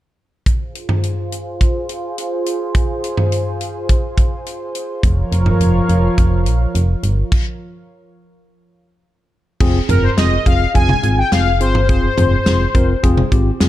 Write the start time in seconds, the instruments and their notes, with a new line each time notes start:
0.46 analog synth pad F4 G#4 C5, kick, closed hi-hat
0.75 closed hi-hat
0.89 mid tom
1.03 closed hi-hat
1.32 closed hi-hat
1.61 kick, closed hi-hat
1.89 closed hi-hat
2.18 closed hi-hat
2.46 closed hi-hat
2.75 kick, closed hi-hat
3.04 closed hi-hat
3.17 mid tom
3.32 closed hi-hat
3.61 closed hi-hat
3.89 kick, closed hi-hat
4.18 kick, closed hi-hat
4.46 closed hi-hat
4.75 closed hi-hat
5.03 fm bass F1, analog synth pad F3 A#4 C#5 F5, kick, closed hi-hat
5.32 fm bass F1, closed hi-hat
5.46 mid tom
5.60 fm bass F1, closed hi-hat
5.89 fm bass F1, closed hi-hat
6.18 fm bass F1, kick, closed hi-hat
6.46 fm bass A#1, closed hi-hat
6.75 fm bass F1, closed hi-hat
7.03 fm bass G1, closed hi-hat
7.32 kick, crash
9.60 fm bass F1, tine electric piano C4 F4 G#4, kick, crash
9.89 fm bass F1, tine electric piano C4 F4 A#4, analog polysynth A#4, closed hi-hat, mid tom
10.03 analog polysynth C5
10.17 fm bass F1, tine electric piano C4 F4 G#4, analog polysynth D#5, snare, closed hi-hat
10.46 fm bass F1, tine electric piano C4 F4 G#4, analog polysynth F5, kick, closed hi-hat
10.75 fm bass F1, tine electric piano C4 F4 G#4, analog polysynth G#5, kick, closed hi-hat
10.89 mid tom
11.03 fm bass G#1, tine electric piano C4 F4 G#4, closed hi-hat
11.17 analog polysynth G5
11.32 fm bass F1, tine electric piano C4 F4 G#4, analog polysynth F5, snare, closed hi-hat
11.60 fm bass G1, tine electric piano C4 F4 G#4, analog polysynth C5, closed hi-hat
11.75 mid tom
11.89 fm bass F1, tine electric piano C4 F4 G#4, analog polysynth C5, kick, closed hi-hat
12.18 fm bass F1, tine electric piano C4 F4 G#4, closed hi-hat, mid tom
12.46 fm bass F1, tine electric piano C4 F4 G#4, snare, closed hi-hat
12.75 fm bass F1, tine electric piano C4 F4 A#4, kick, closed hi-hat
13.03 fm bass F1, tine electric piano C4 F4 G#4, kick, closed hi-hat
13.17 mid tom
13.32 fm bass G#1, tine electric piano C4 F4 G4, kick, closed hi-hat
13.60 fm bass F1, tine electric piano C4 F4 G#4, snare, closed hi-hat